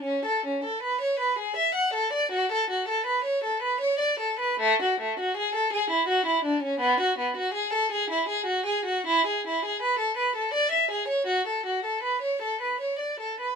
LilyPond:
\new Staff \with { instrumentName = "Violin" } { \time 3/4 \key fis \minor \tempo 4 = 80 cis'16 a'16 cis'16 a'16 b'16 cis''16 b'16 gis'16 e''16 fis''16 a'16 d''16 | fis'16 a'16 fis'16 a'16 b'16 cis''16 a'16 b'16 cis''16 d''16 a'16 b'16 | a16 fis'16 a16 fis'16 gis'16 a'16 gis'16 e'16 fis'16 e'16 d'16 cis'16 | b16 fis'16 b16 fis'16 gis'16 a'16 gis'16 e'16 gis'16 fis'16 gis'16 fis'16 |
e'16 gis'16 e'16 gis'16 b'16 a'16 b'16 a'16 d''16 e''16 gis'16 cis''16 | fis'16 a'16 fis'16 a'16 b'16 cis''16 a'16 b'16 cis''16 d''16 a'16 b'16 | }